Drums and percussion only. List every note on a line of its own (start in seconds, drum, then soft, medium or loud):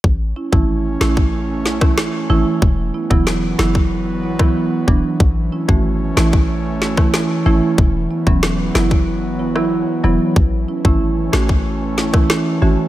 0.04 kick loud
0.53 kick medium
1.01 cross-stick medium
1.01 snare loud
1.17 kick medium
1.66 snare medium
1.81 kick loud
1.81 cross-stick medium
1.98 cross-stick medium
1.98 snare loud
2.62 kick loud
3.11 kick medium
3.27 cross-stick medium
3.27 snare loud
3.59 cross-stick medium
3.59 snare loud
3.75 kick medium
4.39 kick medium
4.39 cross-stick medium
4.88 kick medium
5.20 kick loud
5.69 kick medium
6.17 cross-stick loud
6.17 snare loud
6.33 kick medium
6.82 snare medium
6.97 kick medium
6.97 cross-stick medium
7.14 cross-stick medium
7.14 snare loud
7.78 kick loud
8.27 kick medium
8.43 cross-stick medium
8.43 snare loud
8.75 cross-stick medium
8.75 snare loud
8.91 kick medium
9.56 cross-stick medium
10.36 kick loud
10.85 kick medium
11.33 cross-stick medium
11.33 snare loud
11.49 kick medium
11.98 snare medium
12.14 kick loud
12.14 cross-stick medium
12.30 cross-stick medium
12.30 snare loud